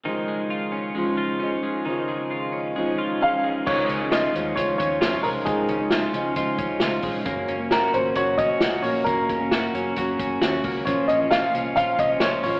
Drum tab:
CC |--------|--------|x-------|--------|
HH |--------|--------|-xxxxxxo|xxxxxxxo|
SD |--------|--------|--o---o-|--o---o-|
BD |--------|--------|o---oo--|oo--oo-o|

CC |--------|--------|--------|
HH |xxxxxxxo|xxxxxxxo|xxxxxxxo|
SD |--o---o-|--o---o-|--o---o-|
BD |o---oo--|oo--oo-o|o---oo--|